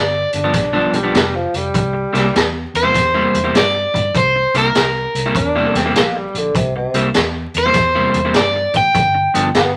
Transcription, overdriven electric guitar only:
0.00 0.31 D5 medium
2.77 3.57 C5 medium
3.58 4.17 D5 medium
4.17 4.57 C5 loud
4.58 5.69 A#4 medium
5.69 6.32 A4 medium
7.58 8.33 C5 medium
8.36 8.76 D5 medium
8.77 9.77 G5 medium

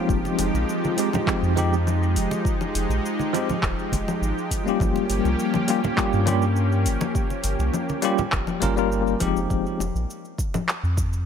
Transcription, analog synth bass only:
0.09 0.20 F1 loud
0.39 0.50 F1 medium
0.54 0.64 A#1 medium
1.42 2.17 F2 medium
2.16 2.27 F1 medium
2.75 2.86 F1 medium
2.89 3.00 A#1 medium
3.62 3.74 D#1 medium
3.92 4.03 F1 medium
4.21 4.33 G#1 medium
4.80 4.91 G1 medium
5.09 5.21 G1 medium
5.24 5.35 C2 medium
6.13 6.87 G2 medium
6.85 6.97 G1 medium
7.44 7.55 G1 medium
7.59 7.70 C2 medium
8.32 8.44 F1 medium
8.62 9.15 G1 loud
9.21 9.32 F1 medium
9.36 9.47 F1 loud
9.50 9.62 F1 medium
9.79 9.91 F1 medium
9.95 10.05 A#1 medium
10.83 11.26 F2 medium

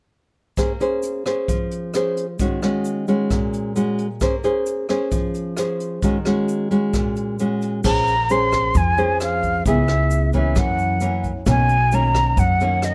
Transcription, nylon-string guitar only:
0.58 1.46 A#3 medium
0.58 0.71 C#4 soft
0.58 0.71 G#4 soft
0.58 0.71 C5 medium
0.80 1.22 C#4 soft
0.80 1.22 G#4 medium
0.80 1.23 C5 medium
1.26 1.90 C#4 soft
1.26 1.90 G#4 medium
1.26 1.91 C5 medium
1.48 2.37 F3 medium
1.94 2.25 C#4 soft
1.94 2.25 G#4 soft
1.94 2.25 C5 medium
2.40 3.29 D#3 medium
2.40 2.59 G#3 soft
2.40 2.59 C#4 soft
2.40 2.60 F#4 medium
2.63 3.04 G#3 soft
2.63 3.05 C#4 medium
2.63 3.05 F#4 medium
3.08 3.72 G#3 soft
3.08 3.73 C#4 medium
3.08 3.73 F#4 medium
3.31 4.19 A#2 medium
3.76 4.06 G#3 soft
3.76 4.06 C#4 soft
3.76 4.07 F#4 medium
4.21 5.10 A#3 medium
4.21 4.35 C#4 soft
4.21 4.35 G#4 medium
4.21 4.35 C5 medium
4.44 4.86 C#4 medium
4.44 4.86 G#4 medium
4.44 4.86 C5 medium
4.89 5.54 C#4 medium
4.89 5.54 G#4 medium
4.89 5.54 C5 medium
5.12 6.01 F3 medium
5.58 6.01 C#4 soft
5.58 6.02 G#4 soft
5.58 6.02 C5 medium
6.03 6.92 D#3 medium
6.03 6.16 G#3 soft
6.03 6.17 C#4 soft
6.03 6.17 F#4 soft
6.26 6.68 G#3 medium
6.26 6.68 C#4 soft
6.26 6.68 F#4 medium
6.71 7.35 G#3 soft
6.71 7.36 C#4 medium
6.71 7.36 F#4 medium
6.94 7.82 A#2 medium
7.40 7.83 G#3 soft
7.40 7.83 C#4 soft
7.40 7.84 F#4 medium
7.84 8.73 A#3 medium
7.84 8.14 C#4 soft
7.84 8.14 G#4 medium
7.84 8.14 C5 medium
8.30 8.75 C#4 soft
8.30 8.75 G#4 soft
8.30 8.75 C5 soft
8.76 9.64 F3 soft
8.98 9.62 C#4 medium
8.98 9.62 G#4 soft
8.98 9.62 C5 medium
9.67 10.55 C#3 soft
9.67 10.31 B3 medium
9.67 10.31 E4 medium
9.67 10.31 G#4 medium
10.34 10.98 E3 medium
10.34 10.99 A#3 medium
10.34 10.99 C#4 medium
10.57 11.45 F#2 soft
11.01 11.31 E3 soft
11.01 11.31 A#3 soft
11.01 11.31 C#4 soft
11.46 12.35 B2 soft
11.46 11.76 D#3 soft
11.46 11.76 A#3 soft
11.46 11.76 C#4 medium
11.92 12.57 D#3 medium
11.92 12.57 A#3 soft
11.92 12.57 C#4 medium
12.38 12.94 F#2 soft
12.61 12.94 D#3 medium
12.61 12.94 A#3 medium
12.61 12.94 C#4 medium

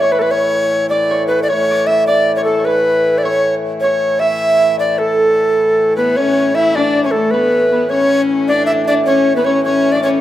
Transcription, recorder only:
0.01 0.14 C#5 medium
0.12 0.21 B4 medium
0.19 0.23 A4 medium
0.19 0.33 B4 loud
0.31 0.89 C#5 loud
0.89 1.26 D5 medium
1.27 1.40 B4 medium
1.43 1.50 D5 medium
1.48 1.88 C#5 loud
1.87 2.07 E5 medium
2.07 2.35 D5 medium
2.36 2.44 C#5 medium
2.44 2.67 A4 medium
2.65 3.20 B4 medium
3.18 3.25 D5 medium
3.23 3.55 C#5 medium
3.80 4.21 C#5 medium
4.20 4.79 E5 loud
4.79 5.00 D5 medium
4.98 5.96 A4 medium
5.97 6.18 B4 medium
6.17 6.56 C#5 medium
6.55 6.77 E5 medium
6.75 7.03 D5 medium
7.04 7.13 C#5 medium
7.11 7.32 A4 medium
7.31 7.91 B4 medium
7.90 8.22 C#5 medium
8.48 8.66 D5 loud
8.66 8.72 E5 medium
8.88 8.94 D5 medium
9.06 9.33 C#5 medium
9.36 9.46 B4 medium
9.45 9.63 C#5 medium
9.64 9.93 C#5 medium
9.92 10.02 D5 medium
10.03 10.09 C#5 medium

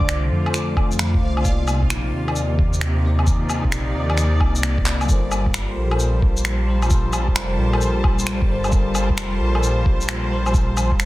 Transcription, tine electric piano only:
0.00 0.42 D3 medium
0.00 0.45 A3 medium
0.00 0.47 F4 medium
0.00 0.50 C5 loud
0.42 1.18 D3 medium
0.42 1.20 A3 medium
0.47 1.21 F4 medium
0.47 1.22 C5 medium
1.20 1.42 D3 medium
1.20 1.43 A3 medium
1.20 1.43 F4 medium
1.24 1.44 C5 medium
1.41 2.22 C3 loud
1.41 2.24 A#3 medium
1.46 2.25 D#4 medium
1.46 2.26 D5 loud
2.24 3.00 C3 medium
2.24 3.02 A#3 medium
2.29 3.03 D#4 medium
2.29 3.04 D5 medium
3.02 3.22 C3 medium
3.02 3.24 A#3 medium
3.02 3.25 D#4 medium
3.02 3.26 D5 medium
3.23 4.04 C3 medium
3.23 4.06 A#3 medium
3.28 4.07 D#4 medium
3.28 4.08 D5 loud
4.06 4.82 C3 medium
4.06 4.83 A#3 medium
4.11 4.85 D#4 medium
4.11 4.86 D5 medium
4.84 5.06 C3 medium
4.84 5.06 A#3 medium
4.84 5.07 D#4 medium
4.88 5.08 D5 medium
5.05 5.86 G3 medium
5.05 5.87 F4 medium
5.09 5.88 A4 medium
5.09 5.89 A#4 medium
5.09 5.90 C5 loud
5.88 6.64 G3 medium
5.88 6.65 F4 medium
5.88 6.66 A4 medium
5.94 6.67 A#4 medium
5.94 6.68 C5 medium
6.66 6.85 G3 medium
6.66 6.87 F4 medium
6.66 6.89 A4 medium
6.66 6.89 A#4 medium
6.70 6.90 C5 medium
6.86 7.68 G3 loud
6.86 7.69 F4 medium
6.86 7.70 A4 medium
6.92 7.71 A#4 medium
6.92 7.72 C5 loud
7.69 8.46 G3 medium
7.69 8.47 F4 medium
7.74 8.48 A4 medium
7.74 8.49 A#4 medium
7.74 8.50 C5 medium
8.48 8.67 G3 medium
8.48 8.69 F4 medium
8.48 8.70 A4 medium
8.48 8.71 A#4 medium
8.48 8.71 C5 medium
8.68 9.50 G3 loud
8.68 9.51 F4 medium
8.72 9.52 A4 medium
8.72 9.53 A#4 medium
8.72 9.54 C5 loud
9.51 10.27 G3 medium
9.51 10.28 F4 medium
9.51 10.29 A4 medium
9.57 10.30 A#4 medium
9.57 10.31 C5 medium
10.30 10.49 G3 medium
10.30 10.51 F4 medium
10.30 10.52 A4 medium
10.30 10.53 A#4 medium
10.30 10.53 C5 medium
10.50 11.05 G3 medium
10.50 11.05 F4 medium
10.50 11.05 A4 medium
10.56 11.05 A#4 medium
10.56 11.05 C5 loud

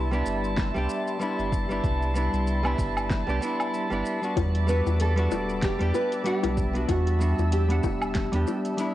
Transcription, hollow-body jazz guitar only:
0.11 0.71 G3 medium
0.11 0.71 B3 medium
0.11 0.72 D4 medium
0.11 0.73 E4 medium
0.74 1.17 G3 medium
0.74 1.17 B3 medium
0.74 1.18 D4 medium
0.74 1.19 G4 loud
1.19 1.65 G3 medium
1.19 1.66 B3 medium
1.19 1.67 D4 medium
1.19 1.67 E4 medium
1.69 2.12 G3 medium
1.69 2.12 B3 medium
1.69 2.13 D4 medium
1.69 2.13 E4 medium
2.14 2.60 G3 medium
2.14 2.61 B3 medium
2.14 2.61 D4 medium
2.14 2.62 E4 medium
2.63 3.23 G3 medium
2.63 3.24 B3 medium
2.63 3.24 D4 medium
2.63 3.25 E4 medium
3.27 3.38 G3 medium
3.27 3.39 B3 medium
3.27 3.40 D4 medium
3.27 3.40 G4 loud
3.41 3.87 G3 medium
3.41 3.87 B3 medium
3.41 3.88 D4 medium
3.41 3.88 E4 medium
3.90 4.18 G3 medium
3.90 4.19 B3 medium
3.90 4.19 D4 medium
3.90 4.20 E4 medium
4.22 4.64 G3 medium
4.22 4.65 B3 medium
4.22 4.65 D4 medium
4.22 4.66 F#4 medium
4.67 5.13 G3 medium
4.67 5.13 B3 medium
4.67 5.14 D4 medium
4.67 5.14 F#4 medium
5.16 5.76 G3 medium
5.16 5.76 B3 medium
5.16 5.77 D4 medium
5.16 5.77 F#4 medium
5.79 6.22 G3 medium
5.79 6.22 B3 medium
5.79 6.23 D4 medium
5.79 6.24 G4 loud
6.24 6.70 G3 medium
6.24 6.71 B3 medium
6.24 6.71 D4 medium
6.24 6.72 F#5 medium
6.73 7.16 G3 medium
6.73 7.17 B3 medium
6.73 7.17 D4 medium
6.73 7.18 F#4 medium
7.19 7.65 G3 medium
7.19 7.66 B3 medium
7.19 7.66 D4 medium
7.19 7.67 F#4 medium
7.68 8.28 G3 medium
7.68 8.29 B3 medium
7.68 8.29 D4 medium
7.68 8.30 F#5 medium
8.32 8.75 G3 loud
8.32 8.75 B3 medium
8.32 8.76 D4 medium
8.32 8.76 G4 loud
8.77 8.94 G3 medium
8.77 8.94 B3 medium
8.77 8.94 D4 medium
8.77 8.94 E4 loud

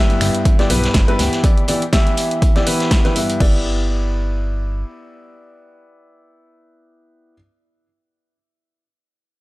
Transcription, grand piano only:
0.00 0.56 G2 loud
0.00 0.56 B3 medium
0.00 0.56 E4 medium
0.00 0.56 G4 medium
0.00 0.56 E5 loud
0.59 0.68 G2 loud
0.59 0.68 B3 medium
0.59 0.68 E4 medium
0.59 0.68 G4 medium
0.59 0.68 D5 loud
0.70 1.05 G2 medium
0.70 1.05 B3 medium
0.70 1.05 E4 medium
0.70 1.05 G4 medium
0.70 1.05 B4 medium
1.08 1.17 G2 medium
1.08 1.17 B3 medium
1.08 1.17 E4 medium
1.08 1.17 G4 medium
1.08 1.17 B4 loud
1.19 1.41 E3 medium
1.19 1.41 B3 medium
1.19 1.41 E4 medium
1.19 1.41 G4 medium
1.19 1.41 E5 medium
1.44 1.63 E3 medium
1.44 1.63 B3 medium
1.44 1.63 E4 medium
1.44 1.63 G4 medium
1.44 1.63 D5 medium
1.68 1.81 E3 medium
1.68 1.81 B3 medium
1.68 1.81 E4 medium
1.68 1.81 G4 medium
1.68 1.81 D5 medium
1.93 2.52 E3 loud
1.93 2.52 B3 medium
1.93 2.52 E4 medium
1.93 2.52 G4 medium
1.93 2.52 E5 loud
2.56 2.64 E3 loud
2.56 2.64 B3 medium
2.56 2.64 E4 medium
2.56 2.64 G4 medium
2.56 2.64 D5 loud
2.67 3.02 E3 medium
2.67 3.02 B3 medium
2.67 3.02 E4 medium
2.67 3.02 G4 medium
2.67 3.02 B4 medium
3.05 3.14 E3 medium
3.05 3.14 B3 medium
3.05 3.14 E4 medium
3.05 3.14 G4 medium
3.05 3.14 B4 medium
3.16 3.38 G2 medium
3.16 3.38 B3 medium
3.16 3.38 E4 medium
3.16 3.38 G4 medium
3.16 3.38 E5 medium
3.40 7.34 B3 medium
3.40 7.34 E4 medium
3.40 7.34 G4 medium
3.40 7.34 D5 loud

